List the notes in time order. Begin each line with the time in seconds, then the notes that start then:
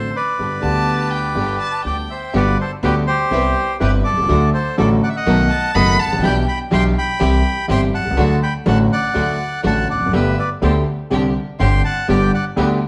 Already playing: A1 A2 D3 A3 D4 F#4 A4 C5
0.16 B4 D5
0.38 G1 G2 D3 G3 B3 D4 G4
0.60 D2 D3 G3 B3 D4 G4 A5
0.65 G4
1.10 G5
1.35 G1 G2 D3 G3 B3 D4 G4
1.60 A5
1.85 D2 D3 G3 B3 D4 G4 D5 G5
2.10 C5 E5
2.33 G1 G2 D3 G3 B3 F#4 G4 B4 D5
2.60 A4 C5
2.83 D2 D3 G3 B3 F#4 G4 B4
3.07 G4 C5
3.31 C2 C3 G3 B3 C4 E4 B4
3.80 G1 G2 C3 G3 B3 C4 E4 G4 B4
4.04 A4 D5
4.11 B1
4.17 C2
4.22 C#2
4.28 D2 D3 F#3 A3 D4 F#4 A4
4.54 A4 C5
4.78 A1 A2 D3 F#3 A3 D4 F#4 A4 D5
5.03 D5 F#5
5.09 E5
5.16 D#5 F#5
5.26 B1 B2 D#3 A3 B3 D#4 F#4 A4
5.50 A5
5.74 F#1 F#2 D#3 A3 B3 D#4 F#4 A4 D#5 F#5 B5
5.99 F#5 A5
6.06 G#1
6.12 A1
6.17 A#1
6.22 B1 B2 E3 B3 D4 E4 G4 G5 B5
6.48 G5 B5
6.71 B1 B2 E3 B3 D4 E4 G4 G5 C6
6.98 G5 B5
7.20 C2 C3 E3 G3 C4 E4 G4
7.68 G1 G2 E3 G3 C4 E4 G4 G5 C6
7.95 B1 F#5 A5
8.00 B1
8.05 C2
8.11 C#2
8.17 D2 D3 F#3 A3 D4 F#4
8.43 G5 B5
8.66 A1 A2 D3 F#3 A3 D4 F#4 F#5 A5
8.92 D5 F#5
9.14 D2 D3 F#3 A3 D4 F#4
9.63 A1 A2 D3 F#3 A3 D4 F#4 F#5 A5
9.90 E2 D5 F#5
9.95 E1
10.00 F1 F2
10.06 F#1 F#2
10.12 G1 G2 D3 A3 B3 G4 B4 E5
10.38 B4 D5
10.61 D2 D3 A3 B3 G4 A4 C5
11.10 C2 C3 D3 G3 C4 D4 G4
11.59 G1 G2 D3 G3 C4 D4 G4 G5 C6
11.84 F#5 A5
12.08 G1 G2 D3 G3 B3 D4 G4 D5 G5
12.34 D5 F#5
12.56 D2 D3 G3 B3 D4 G4 B4 E5